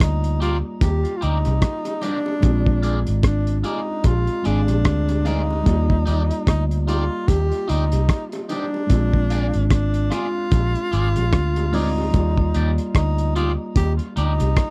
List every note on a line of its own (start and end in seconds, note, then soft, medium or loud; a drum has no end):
0.00 0.61 D2 medium
0.00 2.38 G3 medium
0.00 2.39 A#3 medium
0.00 0.38 D#4 medium
0.00 2.41 F4 medium
0.00 2.40 D5 medium
0.00 kick loud
0.00 cross-stick loud
0.00 closed hi-hat loud
0.24 closed hi-hat medium
0.40 0.58 F4 medium
0.40 0.55 G4 medium
0.40 0.56 A#4 medium
0.40 0.56 D5 medium
0.40 closed hi-hat medium
0.40 high bongo medium
0.81 1.04 D#2 loud
0.81 1.19 G4 medium
0.81 kick loud
0.81 closed hi-hat loud
0.81 high bongo medium
1.05 closed hi-hat soft
1.17 1.24 F4 medium
1.17 1.36 G4 medium
1.22 1.45 D2 medium
1.22 2.05 D#4 medium
1.22 1.37 A#4 medium
1.22 1.37 D5 medium
1.22 closed hi-hat medium
1.45 1.62 C2 medium
1.45 closed hi-hat medium
1.45 high bongo medium
1.62 kick loud
1.62 cross-stick loud
1.62 closed hi-hat loud
1.85 closed hi-hat medium
1.85 high bongo medium
2.02 3.00 D4 medium
2.02 2.17 G4 loud
2.02 2.17 A#4 medium
2.02 2.18 D5 loud
2.02 closed hi-hat medium
2.02 low bongo medium
2.26 high bongo medium
2.41 3.04 A#1 loud
2.41 4.40 G#3 medium
2.41 4.41 C4 medium
2.41 kick loud
2.41 closed hi-hat loud
2.41 high bongo medium
2.45 2.52 C#4 soft
2.45 4.43 F4 medium
2.51 4.44 D5 medium
2.66 kick medium
2.82 2.98 F4 medium
2.82 2.98 G#4 loud
2.82 2.99 D5 medium
2.82 closed hi-hat medium
3.07 3.62 G#1 loud
3.07 closed hi-hat medium
3.23 3.60 D4 medium
3.23 kick loud
3.23 cross-stick loud
3.23 closed hi-hat loud
3.47 closed hi-hat medium
3.60 3.68 D4 medium
3.60 3.79 F4 medium
3.60 closed hi-hat medium
3.65 4.08 D#4 medium
3.65 3.79 G#4 medium
3.65 3.80 D5 medium
3.65 high bongo soft
4.04 4.27 A#1 medium
4.04 4.48 F4 loud
4.04 kick loud
4.04 closed hi-hat medium
4.04 high bongo medium
4.27 closed hi-hat soft
4.44 4.68 G#1 medium
4.44 5.66 G#3 medium
4.44 5.66 C4 soft
4.44 5.28 D4 medium
4.44 4.59 F4 medium
4.44 4.60 G#4 medium
4.44 5.67 G#4 medium
4.44 5.66 D5 soft
4.44 4.60 D5 medium
4.44 closed hi-hat medium
4.68 4.85 A#1 medium
4.68 closed hi-hat medium
4.68 high bongo medium
4.85 5.63 D2 medium
4.85 kick loud
4.85 cross-stick loud
4.85 closed hi-hat medium
5.09 closed hi-hat medium
5.09 high bongo medium
5.25 6.47 D#4 loud
5.25 5.40 F4 loud
5.25 5.41 G#4 medium
5.25 5.41 D5 loud
5.25 closed hi-hat medium
5.25 low bongo medium
5.51 high bongo medium
5.64 6.05 D#2 loud
5.64 8.85 G3 medium
5.64 8.86 A#3 medium
5.64 8.87 D5 medium
5.64 kick loud
5.64 closed hi-hat medium
5.64 high bongo medium
5.70 8.88 F4 medium
5.90 kick medium
6.05 6.30 D#2 loud
6.05 6.21 D#4 medium
6.05 6.21 G4 loud
6.05 6.22 D5 loud
6.05 closed hi-hat medium
6.31 closed hi-hat medium
6.47 7.08 D2 loud
6.47 6.64 D#4 medium
6.47 kick loud
6.47 cross-stick loud
6.47 closed hi-hat loud
6.71 closed hi-hat medium
6.87 7.02 D#4 medium
6.87 7.29 F4 medium
6.87 7.03 G4 medium
6.87 7.03 D5 medium
6.87 closed hi-hat medium
6.87 high bongo medium
7.28 7.51 D#2 loud
7.28 7.71 G4 loud
7.28 kick loud
7.28 closed hi-hat loud
7.28 high bongo medium
7.52 closed hi-hat soft
7.68 7.92 D2 medium
7.68 7.83 D#4 medium
7.68 8.25 D#4 medium
7.68 7.84 G4 medium
7.68 7.84 D5 medium
7.68 closed hi-hat medium
7.92 8.09 C2 loud
7.92 closed hi-hat medium
7.92 high bongo medium
8.09 kick loud
8.09 cross-stick loud
8.09 closed hi-hat medium
8.32 closed hi-hat medium
8.32 high bongo medium
8.49 9.67 D4 medium
8.49 8.64 D#4 medium
8.49 8.65 G4 medium
8.49 8.65 D5 medium
8.49 closed hi-hat medium
8.49 low bongo medium
8.74 high bongo medium
8.87 9.51 A#1 loud
8.87 11.68 G#3 medium
8.87 11.69 C4 medium
8.87 11.70 D4 medium
8.87 kick loud
8.87 closed hi-hat loud
8.87 high bongo medium
8.93 11.71 F4 medium
9.13 kick medium
9.30 9.45 F4 medium
9.30 9.46 G#4 medium
9.30 9.46 D5 loud
9.30 closed hi-hat medium
9.54 10.09 G#1 loud
9.54 closed hi-hat medium
9.70 10.15 D4 medium
9.70 kick loud
9.70 cross-stick loud
9.70 closed hi-hat loud
9.94 closed hi-hat medium
10.10 10.26 F4 medium
10.10 11.76 F4 loud
10.10 10.26 G#4 medium
10.10 10.27 D5 medium
10.10 cross-stick medium
10.10 closed hi-hat medium
10.10 high bongo medium
10.52 10.74 A#1 medium
10.52 kick loud
10.52 closed hi-hat loud
10.52 high bongo medium
10.75 closed hi-hat soft
10.92 11.15 G#1 medium
10.92 11.07 F4 medium
10.92 11.08 G#4 medium
10.92 11.08 D5 medium
10.92 closed hi-hat medium
11.16 11.33 A#1 medium
11.16 closed hi-hat medium
11.16 high bongo medium
11.33 12.10 D2 medium
11.33 kick loud
11.33 cross-stick loud
11.33 closed hi-hat medium
11.56 closed hi-hat medium
11.56 high bongo medium
11.72 12.13 G#3 soft
11.72 12.14 C4 soft
11.72 12.71 D#4 loud
11.72 11.88 F4 medium
11.72 12.15 F4 medium
11.72 11.89 G#4 medium
11.72 12.14 D5 soft
11.72 11.89 D5 medium
11.72 open hi-hat medium
11.72 low bongo medium
11.98 high bongo medium
12.11 12.52 D#2 medium
12.11 14.70 G3 medium
12.11 14.70 A#3 medium
12.11 kick loud
12.11 closed hi-hat loud
12.11 high bongo medium
12.15 14.70 F4 medium
12.15 14.70 D5 medium
12.38 kick medium
12.54 12.77 D#2 medium
12.54 12.69 D#4 medium
12.54 12.70 G4 medium
12.54 12.70 D5 loud
12.54 closed hi-hat medium
12.78 closed hi-hat medium
12.95 13.55 D2 medium
12.95 13.33 D#4 medium
12.95 kick loud
12.95 cross-stick loud
12.95 closed hi-hat medium
13.18 closed hi-hat medium
13.35 13.50 D#4 medium
13.35 13.52 F4 medium
13.35 13.51 G4 medium
13.35 13.51 D5 medium
13.35 closed hi-hat medium
13.35 high bongo medium
13.76 13.98 D#2 medium
13.76 13.93 G4 loud
13.76 kick loud
13.76 closed hi-hat loud
13.76 high bongo medium
13.99 closed hi-hat soft
14.16 14.39 D2 medium
14.16 14.31 D#4 medium
14.16 14.70 D#4 loud
14.16 14.32 G4 medium
14.16 14.32 D5 medium
14.16 closed hi-hat medium
14.40 14.56 C2 medium
14.40 closed hi-hat medium
14.40 high bongo medium
14.56 kick loud
14.56 cross-stick loud
14.56 closed hi-hat medium